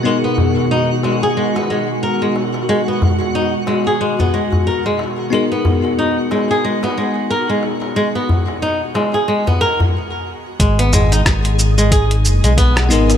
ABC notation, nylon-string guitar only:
X:1
M:4/4
L:1/16
Q:"Swing 16ths" 1/4=91
K:G#m
V:1 name="Nylon-string guitar"
G, B, z2 D z G, G G, B, G,2 A G, z2 | G, B, z2 D z G, G G, B, G,2 A G, z2 | G, B, z2 D z G, G G, B, G,2 A G, z2 | G, B, z2 D z G, G G, B, A z4 z |
G, B, G, D z3 G, G z2 G, B, z G, z |]